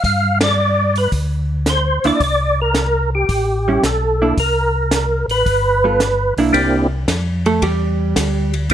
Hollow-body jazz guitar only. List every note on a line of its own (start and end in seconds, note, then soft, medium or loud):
2.05 2.19 A#3 medium
2.05 2.19 D4 medium
2.05 2.20 E4 medium
3.68 3.82 G3 medium
3.68 3.82 C#4 medium
3.68 3.83 E4 medium
4.22 4.36 A#3 medium
4.22 4.36 D4 medium
4.22 4.36 E4 medium
5.84 5.99 G3 medium
5.84 5.99 B3 medium
5.84 5.99 F4 medium
5.84 5.99 A4 medium
6.38 6.53 A#3 medium
6.38 6.53 D4 medium
6.38 6.53 E4 medium
7.46 7.62 A3 medium
7.46 7.62 A4 medium
7.63 8.50 G3 medium
7.63 8.50 G4 medium